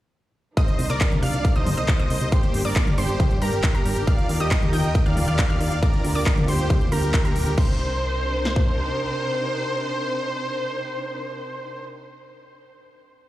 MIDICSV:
0, 0, Header, 1, 6, 480
1, 0, Start_track
1, 0, Key_signature, -3, "minor"
1, 0, Tempo, 437956
1, 625, Time_signature, 4, 2, 24, 8
1, 14565, End_track
2, 0, Start_track
2, 0, Title_t, "Synth pluck"
2, 0, Program_c, 0, 84
2, 625, Note_on_c, 0, 87, 99
2, 946, Note_off_c, 0, 87, 0
2, 984, Note_on_c, 0, 86, 92
2, 1306, Note_off_c, 0, 86, 0
2, 1343, Note_on_c, 0, 89, 96
2, 1665, Note_off_c, 0, 89, 0
2, 1705, Note_on_c, 0, 87, 90
2, 1919, Note_off_c, 0, 87, 0
2, 1945, Note_on_c, 0, 87, 89
2, 2159, Note_off_c, 0, 87, 0
2, 2185, Note_on_c, 0, 87, 96
2, 2506, Note_off_c, 0, 87, 0
2, 2546, Note_on_c, 0, 84, 94
2, 2867, Note_off_c, 0, 84, 0
2, 2904, Note_on_c, 0, 86, 96
2, 3226, Note_off_c, 0, 86, 0
2, 3266, Note_on_c, 0, 84, 96
2, 3694, Note_off_c, 0, 84, 0
2, 3746, Note_on_c, 0, 82, 97
2, 4066, Note_off_c, 0, 82, 0
2, 4105, Note_on_c, 0, 82, 97
2, 4426, Note_off_c, 0, 82, 0
2, 4465, Note_on_c, 0, 89, 96
2, 4786, Note_off_c, 0, 89, 0
2, 4824, Note_on_c, 0, 87, 97
2, 5146, Note_off_c, 0, 87, 0
2, 5184, Note_on_c, 0, 91, 97
2, 5506, Note_off_c, 0, 91, 0
2, 5544, Note_on_c, 0, 89, 93
2, 5758, Note_off_c, 0, 89, 0
2, 5784, Note_on_c, 0, 89, 86
2, 5998, Note_off_c, 0, 89, 0
2, 6022, Note_on_c, 0, 89, 94
2, 6345, Note_off_c, 0, 89, 0
2, 6384, Note_on_c, 0, 86, 93
2, 6706, Note_off_c, 0, 86, 0
2, 6744, Note_on_c, 0, 86, 96
2, 7066, Note_off_c, 0, 86, 0
2, 7105, Note_on_c, 0, 84, 93
2, 7533, Note_off_c, 0, 84, 0
2, 7583, Note_on_c, 0, 82, 97
2, 7905, Note_off_c, 0, 82, 0
2, 7945, Note_on_c, 0, 82, 99
2, 8266, Note_off_c, 0, 82, 0
2, 8304, Note_on_c, 0, 84, 90
2, 13066, Note_off_c, 0, 84, 0
2, 14565, End_track
3, 0, Start_track
3, 0, Title_t, "Supersaw synth"
3, 0, Program_c, 1, 81
3, 624, Note_on_c, 1, 72, 79
3, 625, Note_on_c, 1, 75, 102
3, 946, Note_off_c, 1, 72, 0
3, 946, Note_off_c, 1, 75, 0
3, 985, Note_on_c, 1, 70, 83
3, 985, Note_on_c, 1, 74, 100
3, 1306, Note_off_c, 1, 70, 0
3, 1306, Note_off_c, 1, 74, 0
3, 1344, Note_on_c, 1, 77, 97
3, 1345, Note_on_c, 1, 74, 79
3, 1666, Note_off_c, 1, 74, 0
3, 1666, Note_off_c, 1, 77, 0
3, 1705, Note_on_c, 1, 72, 79
3, 1705, Note_on_c, 1, 75, 93
3, 1919, Note_off_c, 1, 72, 0
3, 1919, Note_off_c, 1, 75, 0
3, 1945, Note_on_c, 1, 72, 76
3, 1945, Note_on_c, 1, 75, 92
3, 2159, Note_off_c, 1, 72, 0
3, 2159, Note_off_c, 1, 75, 0
3, 2184, Note_on_c, 1, 72, 78
3, 2184, Note_on_c, 1, 75, 91
3, 2506, Note_off_c, 1, 72, 0
3, 2506, Note_off_c, 1, 75, 0
3, 2545, Note_on_c, 1, 67, 78
3, 2545, Note_on_c, 1, 72, 95
3, 2866, Note_off_c, 1, 67, 0
3, 2866, Note_off_c, 1, 72, 0
3, 2904, Note_on_c, 1, 74, 104
3, 2905, Note_on_c, 1, 70, 83
3, 3226, Note_off_c, 1, 70, 0
3, 3226, Note_off_c, 1, 74, 0
3, 3264, Note_on_c, 1, 72, 95
3, 3265, Note_on_c, 1, 67, 77
3, 3693, Note_off_c, 1, 67, 0
3, 3693, Note_off_c, 1, 72, 0
3, 3744, Note_on_c, 1, 67, 85
3, 3744, Note_on_c, 1, 70, 101
3, 4066, Note_off_c, 1, 67, 0
3, 4066, Note_off_c, 1, 70, 0
3, 4103, Note_on_c, 1, 70, 94
3, 4104, Note_on_c, 1, 67, 78
3, 4425, Note_off_c, 1, 67, 0
3, 4425, Note_off_c, 1, 70, 0
3, 4465, Note_on_c, 1, 74, 80
3, 4465, Note_on_c, 1, 77, 102
3, 4786, Note_off_c, 1, 74, 0
3, 4786, Note_off_c, 1, 77, 0
3, 4825, Note_on_c, 1, 67, 85
3, 4825, Note_on_c, 1, 75, 101
3, 5146, Note_off_c, 1, 67, 0
3, 5146, Note_off_c, 1, 75, 0
3, 5184, Note_on_c, 1, 75, 78
3, 5184, Note_on_c, 1, 79, 96
3, 5506, Note_off_c, 1, 75, 0
3, 5506, Note_off_c, 1, 79, 0
3, 5545, Note_on_c, 1, 74, 81
3, 5545, Note_on_c, 1, 77, 94
3, 5759, Note_off_c, 1, 74, 0
3, 5759, Note_off_c, 1, 77, 0
3, 5784, Note_on_c, 1, 74, 79
3, 5785, Note_on_c, 1, 77, 93
3, 5999, Note_off_c, 1, 74, 0
3, 5999, Note_off_c, 1, 77, 0
3, 6025, Note_on_c, 1, 74, 80
3, 6025, Note_on_c, 1, 77, 96
3, 6346, Note_off_c, 1, 74, 0
3, 6346, Note_off_c, 1, 77, 0
3, 6385, Note_on_c, 1, 70, 79
3, 6385, Note_on_c, 1, 74, 96
3, 6706, Note_off_c, 1, 70, 0
3, 6706, Note_off_c, 1, 74, 0
3, 6745, Note_on_c, 1, 74, 103
3, 6746, Note_on_c, 1, 70, 85
3, 7066, Note_off_c, 1, 70, 0
3, 7066, Note_off_c, 1, 74, 0
3, 7105, Note_on_c, 1, 67, 79
3, 7105, Note_on_c, 1, 72, 97
3, 7533, Note_off_c, 1, 67, 0
3, 7533, Note_off_c, 1, 72, 0
3, 7584, Note_on_c, 1, 67, 80
3, 7584, Note_on_c, 1, 70, 104
3, 7906, Note_off_c, 1, 67, 0
3, 7906, Note_off_c, 1, 70, 0
3, 7944, Note_on_c, 1, 67, 82
3, 7944, Note_on_c, 1, 70, 98
3, 8266, Note_off_c, 1, 67, 0
3, 8266, Note_off_c, 1, 70, 0
3, 8304, Note_on_c, 1, 72, 106
3, 12977, Note_off_c, 1, 72, 0
3, 14565, End_track
4, 0, Start_track
4, 0, Title_t, "String section"
4, 0, Program_c, 2, 48
4, 625, Note_on_c, 2, 58, 78
4, 625, Note_on_c, 2, 62, 75
4, 626, Note_on_c, 2, 48, 83
4, 626, Note_on_c, 2, 55, 76
4, 626, Note_on_c, 2, 63, 87
4, 2526, Note_off_c, 2, 48, 0
4, 2526, Note_off_c, 2, 62, 0
4, 2526, Note_off_c, 2, 63, 0
4, 2546, Note_on_c, 2, 62, 93
4, 4427, Note_off_c, 2, 55, 0
4, 4427, Note_off_c, 2, 58, 0
4, 4446, Note_off_c, 2, 62, 0
4, 4466, Note_on_c, 2, 63, 76
4, 4466, Note_on_c, 2, 65, 76
4, 4466, Note_on_c, 2, 70, 93
4, 4467, Note_on_c, 2, 51, 84
4, 4467, Note_on_c, 2, 67, 77
4, 6366, Note_off_c, 2, 63, 0
4, 6366, Note_off_c, 2, 70, 0
4, 6367, Note_off_c, 2, 51, 0
4, 6385, Note_on_c, 2, 50, 84
4, 6385, Note_on_c, 2, 58, 77
4, 6385, Note_on_c, 2, 60, 75
4, 8267, Note_off_c, 2, 65, 0
4, 8267, Note_off_c, 2, 67, 0
4, 8286, Note_off_c, 2, 50, 0
4, 8286, Note_off_c, 2, 58, 0
4, 8286, Note_off_c, 2, 60, 0
4, 8305, Note_on_c, 2, 48, 83
4, 8305, Note_on_c, 2, 60, 76
4, 8305, Note_on_c, 2, 62, 76
4, 8305, Note_on_c, 2, 63, 76
4, 8305, Note_on_c, 2, 70, 95
4, 12978, Note_off_c, 2, 48, 0
4, 12978, Note_off_c, 2, 60, 0
4, 12978, Note_off_c, 2, 62, 0
4, 12978, Note_off_c, 2, 63, 0
4, 12978, Note_off_c, 2, 70, 0
4, 14565, End_track
5, 0, Start_track
5, 0, Title_t, "FM bass"
5, 0, Program_c, 3, 39
5, 865, Note_on_c, 3, 36, 99
5, 966, Note_off_c, 3, 36, 0
5, 985, Note_on_c, 3, 36, 83
5, 1086, Note_off_c, 3, 36, 0
5, 1224, Note_on_c, 3, 36, 78
5, 1326, Note_off_c, 3, 36, 0
5, 1345, Note_on_c, 3, 36, 96
5, 1446, Note_off_c, 3, 36, 0
5, 1464, Note_on_c, 3, 36, 81
5, 1566, Note_off_c, 3, 36, 0
5, 1705, Note_on_c, 3, 36, 78
5, 1806, Note_off_c, 3, 36, 0
5, 1825, Note_on_c, 3, 31, 94
5, 1926, Note_off_c, 3, 31, 0
5, 1945, Note_on_c, 3, 36, 81
5, 2046, Note_off_c, 3, 36, 0
5, 2184, Note_on_c, 3, 36, 78
5, 2286, Note_off_c, 3, 36, 0
5, 2304, Note_on_c, 3, 36, 93
5, 2406, Note_off_c, 3, 36, 0
5, 2425, Note_on_c, 3, 36, 85
5, 2526, Note_off_c, 3, 36, 0
5, 2785, Note_on_c, 3, 31, 96
5, 2886, Note_off_c, 3, 31, 0
5, 2905, Note_on_c, 3, 31, 86
5, 3006, Note_off_c, 3, 31, 0
5, 3144, Note_on_c, 3, 31, 75
5, 3246, Note_off_c, 3, 31, 0
5, 3265, Note_on_c, 3, 31, 96
5, 3366, Note_off_c, 3, 31, 0
5, 3385, Note_on_c, 3, 31, 86
5, 3486, Note_off_c, 3, 31, 0
5, 3625, Note_on_c, 3, 31, 75
5, 3726, Note_off_c, 3, 31, 0
5, 3744, Note_on_c, 3, 43, 98
5, 3846, Note_off_c, 3, 43, 0
5, 3864, Note_on_c, 3, 31, 83
5, 3966, Note_off_c, 3, 31, 0
5, 4105, Note_on_c, 3, 31, 78
5, 4206, Note_off_c, 3, 31, 0
5, 4224, Note_on_c, 3, 31, 93
5, 4326, Note_off_c, 3, 31, 0
5, 4344, Note_on_c, 3, 31, 85
5, 4446, Note_off_c, 3, 31, 0
5, 4705, Note_on_c, 3, 39, 97
5, 4806, Note_off_c, 3, 39, 0
5, 4824, Note_on_c, 3, 39, 81
5, 4926, Note_off_c, 3, 39, 0
5, 5064, Note_on_c, 3, 39, 78
5, 5166, Note_off_c, 3, 39, 0
5, 5184, Note_on_c, 3, 39, 97
5, 5285, Note_off_c, 3, 39, 0
5, 5304, Note_on_c, 3, 39, 84
5, 5406, Note_off_c, 3, 39, 0
5, 5544, Note_on_c, 3, 39, 76
5, 5646, Note_off_c, 3, 39, 0
5, 5664, Note_on_c, 3, 27, 95
5, 5766, Note_off_c, 3, 27, 0
5, 5785, Note_on_c, 3, 39, 86
5, 5886, Note_off_c, 3, 39, 0
5, 6025, Note_on_c, 3, 39, 81
5, 6126, Note_off_c, 3, 39, 0
5, 6145, Note_on_c, 3, 39, 97
5, 6246, Note_off_c, 3, 39, 0
5, 6265, Note_on_c, 3, 39, 86
5, 6366, Note_off_c, 3, 39, 0
5, 6625, Note_on_c, 3, 38, 98
5, 6726, Note_off_c, 3, 38, 0
5, 6744, Note_on_c, 3, 38, 87
5, 6846, Note_off_c, 3, 38, 0
5, 6985, Note_on_c, 3, 38, 78
5, 7086, Note_off_c, 3, 38, 0
5, 7105, Note_on_c, 3, 38, 99
5, 7206, Note_off_c, 3, 38, 0
5, 7225, Note_on_c, 3, 38, 86
5, 7326, Note_off_c, 3, 38, 0
5, 7464, Note_on_c, 3, 38, 76
5, 7566, Note_off_c, 3, 38, 0
5, 7585, Note_on_c, 3, 38, 96
5, 7686, Note_off_c, 3, 38, 0
5, 7705, Note_on_c, 3, 38, 82
5, 7806, Note_off_c, 3, 38, 0
5, 7945, Note_on_c, 3, 38, 76
5, 8046, Note_off_c, 3, 38, 0
5, 8065, Note_on_c, 3, 26, 96
5, 8166, Note_off_c, 3, 26, 0
5, 8185, Note_on_c, 3, 38, 86
5, 8286, Note_off_c, 3, 38, 0
5, 8304, Note_on_c, 3, 36, 96
5, 9701, Note_off_c, 3, 36, 0
5, 14565, End_track
6, 0, Start_track
6, 0, Title_t, "Drums"
6, 625, Note_on_c, 9, 36, 126
6, 625, Note_on_c, 9, 42, 54
6, 734, Note_off_c, 9, 42, 0
6, 735, Note_off_c, 9, 36, 0
6, 745, Note_on_c, 9, 42, 28
6, 855, Note_off_c, 9, 42, 0
6, 865, Note_on_c, 9, 46, 104
6, 974, Note_off_c, 9, 46, 0
6, 985, Note_on_c, 9, 42, 58
6, 1094, Note_off_c, 9, 42, 0
6, 1105, Note_on_c, 9, 36, 117
6, 1105, Note_on_c, 9, 39, 123
6, 1105, Note_on_c, 9, 42, 54
6, 1214, Note_off_c, 9, 39, 0
6, 1214, Note_off_c, 9, 42, 0
6, 1215, Note_off_c, 9, 36, 0
6, 1225, Note_on_c, 9, 42, 28
6, 1225, Note_on_c, 9, 47, 78
6, 1334, Note_off_c, 9, 42, 0
6, 1334, Note_off_c, 9, 47, 0
6, 1345, Note_on_c, 9, 46, 104
6, 1454, Note_off_c, 9, 46, 0
6, 1465, Note_on_c, 9, 42, 53
6, 1575, Note_off_c, 9, 42, 0
6, 1585, Note_on_c, 9, 36, 115
6, 1585, Note_on_c, 9, 42, 58
6, 1695, Note_off_c, 9, 36, 0
6, 1695, Note_off_c, 9, 42, 0
6, 1705, Note_on_c, 9, 42, 28
6, 1815, Note_off_c, 9, 42, 0
6, 1825, Note_on_c, 9, 46, 104
6, 1825, Note_on_c, 9, 47, 59
6, 1935, Note_off_c, 9, 46, 0
6, 1935, Note_off_c, 9, 47, 0
6, 1945, Note_on_c, 9, 42, 56
6, 2054, Note_off_c, 9, 42, 0
6, 2065, Note_on_c, 9, 36, 122
6, 2065, Note_on_c, 9, 39, 127
6, 2065, Note_on_c, 9, 42, 57
6, 2174, Note_off_c, 9, 39, 0
6, 2174, Note_off_c, 9, 42, 0
6, 2175, Note_off_c, 9, 36, 0
6, 2185, Note_on_c, 9, 42, 28
6, 2294, Note_off_c, 9, 42, 0
6, 2305, Note_on_c, 9, 46, 109
6, 2414, Note_off_c, 9, 46, 0
6, 2425, Note_on_c, 9, 42, 56
6, 2535, Note_off_c, 9, 42, 0
6, 2545, Note_on_c, 9, 36, 127
6, 2545, Note_on_c, 9, 42, 53
6, 2654, Note_off_c, 9, 42, 0
6, 2655, Note_off_c, 9, 36, 0
6, 2665, Note_on_c, 9, 42, 28
6, 2775, Note_off_c, 9, 42, 0
6, 2785, Note_on_c, 9, 46, 112
6, 2895, Note_off_c, 9, 46, 0
6, 2905, Note_on_c, 9, 46, 67
6, 3014, Note_off_c, 9, 46, 0
6, 3025, Note_on_c, 9, 36, 125
6, 3025, Note_on_c, 9, 39, 127
6, 3025, Note_on_c, 9, 42, 52
6, 3134, Note_off_c, 9, 39, 0
6, 3134, Note_off_c, 9, 42, 0
6, 3135, Note_off_c, 9, 36, 0
6, 3145, Note_on_c, 9, 42, 28
6, 3145, Note_on_c, 9, 47, 78
6, 3255, Note_off_c, 9, 42, 0
6, 3255, Note_off_c, 9, 47, 0
6, 3265, Note_on_c, 9, 46, 112
6, 3374, Note_off_c, 9, 46, 0
6, 3385, Note_on_c, 9, 42, 54
6, 3495, Note_off_c, 9, 42, 0
6, 3505, Note_on_c, 9, 36, 117
6, 3505, Note_on_c, 9, 42, 57
6, 3505, Note_on_c, 9, 47, 80
6, 3615, Note_off_c, 9, 36, 0
6, 3615, Note_off_c, 9, 42, 0
6, 3615, Note_off_c, 9, 47, 0
6, 3625, Note_on_c, 9, 42, 28
6, 3734, Note_off_c, 9, 42, 0
6, 3745, Note_on_c, 9, 46, 109
6, 3854, Note_off_c, 9, 46, 0
6, 3865, Note_on_c, 9, 42, 55
6, 3975, Note_off_c, 9, 42, 0
6, 3985, Note_on_c, 9, 36, 121
6, 3985, Note_on_c, 9, 39, 127
6, 3985, Note_on_c, 9, 42, 54
6, 4095, Note_off_c, 9, 36, 0
6, 4095, Note_off_c, 9, 39, 0
6, 4095, Note_off_c, 9, 42, 0
6, 4106, Note_on_c, 9, 42, 27
6, 4215, Note_off_c, 9, 42, 0
6, 4225, Note_on_c, 9, 46, 113
6, 4335, Note_off_c, 9, 46, 0
6, 4346, Note_on_c, 9, 42, 57
6, 4455, Note_off_c, 9, 42, 0
6, 4465, Note_on_c, 9, 36, 127
6, 4466, Note_on_c, 9, 42, 51
6, 4575, Note_off_c, 9, 36, 0
6, 4575, Note_off_c, 9, 42, 0
6, 4586, Note_on_c, 9, 42, 26
6, 4695, Note_off_c, 9, 42, 0
6, 4705, Note_on_c, 9, 46, 113
6, 4815, Note_off_c, 9, 46, 0
6, 4825, Note_on_c, 9, 42, 54
6, 4935, Note_off_c, 9, 42, 0
6, 4945, Note_on_c, 9, 36, 125
6, 4945, Note_on_c, 9, 39, 127
6, 4945, Note_on_c, 9, 42, 52
6, 5055, Note_off_c, 9, 36, 0
6, 5055, Note_off_c, 9, 39, 0
6, 5055, Note_off_c, 9, 42, 0
6, 5065, Note_on_c, 9, 42, 27
6, 5065, Note_on_c, 9, 47, 82
6, 5175, Note_off_c, 9, 42, 0
6, 5175, Note_off_c, 9, 47, 0
6, 5185, Note_on_c, 9, 46, 113
6, 5294, Note_off_c, 9, 46, 0
6, 5305, Note_on_c, 9, 42, 49
6, 5414, Note_off_c, 9, 42, 0
6, 5425, Note_on_c, 9, 36, 126
6, 5425, Note_on_c, 9, 42, 53
6, 5534, Note_off_c, 9, 42, 0
6, 5535, Note_off_c, 9, 36, 0
6, 5545, Note_on_c, 9, 42, 26
6, 5655, Note_off_c, 9, 42, 0
6, 5665, Note_on_c, 9, 46, 112
6, 5665, Note_on_c, 9, 47, 61
6, 5775, Note_off_c, 9, 46, 0
6, 5775, Note_off_c, 9, 47, 0
6, 5785, Note_on_c, 9, 42, 52
6, 5895, Note_off_c, 9, 42, 0
6, 5905, Note_on_c, 9, 36, 127
6, 5905, Note_on_c, 9, 39, 127
6, 5905, Note_on_c, 9, 42, 53
6, 6015, Note_off_c, 9, 36, 0
6, 6015, Note_off_c, 9, 39, 0
6, 6015, Note_off_c, 9, 42, 0
6, 6025, Note_on_c, 9, 42, 27
6, 6135, Note_off_c, 9, 42, 0
6, 6145, Note_on_c, 9, 46, 114
6, 6254, Note_off_c, 9, 46, 0
6, 6265, Note_on_c, 9, 42, 53
6, 6375, Note_off_c, 9, 42, 0
6, 6385, Note_on_c, 9, 36, 127
6, 6385, Note_on_c, 9, 42, 50
6, 6495, Note_off_c, 9, 36, 0
6, 6495, Note_off_c, 9, 42, 0
6, 6505, Note_on_c, 9, 42, 25
6, 6615, Note_off_c, 9, 42, 0
6, 6625, Note_on_c, 9, 46, 115
6, 6735, Note_off_c, 9, 46, 0
6, 6746, Note_on_c, 9, 46, 65
6, 6855, Note_off_c, 9, 46, 0
6, 6865, Note_on_c, 9, 36, 125
6, 6865, Note_on_c, 9, 39, 117
6, 6975, Note_off_c, 9, 36, 0
6, 6975, Note_off_c, 9, 39, 0
6, 6985, Note_on_c, 9, 42, 27
6, 6985, Note_on_c, 9, 47, 84
6, 7095, Note_off_c, 9, 42, 0
6, 7095, Note_off_c, 9, 47, 0
6, 7105, Note_on_c, 9, 46, 113
6, 7214, Note_off_c, 9, 46, 0
6, 7225, Note_on_c, 9, 42, 52
6, 7335, Note_off_c, 9, 42, 0
6, 7345, Note_on_c, 9, 36, 126
6, 7345, Note_on_c, 9, 42, 53
6, 7345, Note_on_c, 9, 47, 84
6, 7454, Note_off_c, 9, 36, 0
6, 7455, Note_off_c, 9, 42, 0
6, 7455, Note_off_c, 9, 47, 0
6, 7465, Note_on_c, 9, 42, 26
6, 7575, Note_off_c, 9, 42, 0
6, 7584, Note_on_c, 9, 46, 110
6, 7694, Note_off_c, 9, 46, 0
6, 7705, Note_on_c, 9, 42, 51
6, 7814, Note_off_c, 9, 42, 0
6, 7824, Note_on_c, 9, 36, 124
6, 7825, Note_on_c, 9, 39, 120
6, 7825, Note_on_c, 9, 42, 55
6, 7934, Note_off_c, 9, 36, 0
6, 7934, Note_off_c, 9, 39, 0
6, 7934, Note_off_c, 9, 42, 0
6, 7945, Note_on_c, 9, 42, 26
6, 8054, Note_off_c, 9, 42, 0
6, 8064, Note_on_c, 9, 46, 116
6, 8174, Note_off_c, 9, 46, 0
6, 8184, Note_on_c, 9, 42, 51
6, 8293, Note_off_c, 9, 42, 0
6, 8304, Note_on_c, 9, 36, 117
6, 8304, Note_on_c, 9, 49, 87
6, 8413, Note_off_c, 9, 49, 0
6, 8414, Note_off_c, 9, 36, 0
6, 9264, Note_on_c, 9, 38, 61
6, 9374, Note_off_c, 9, 38, 0
6, 9384, Note_on_c, 9, 36, 82
6, 9494, Note_off_c, 9, 36, 0
6, 14565, End_track
0, 0, End_of_file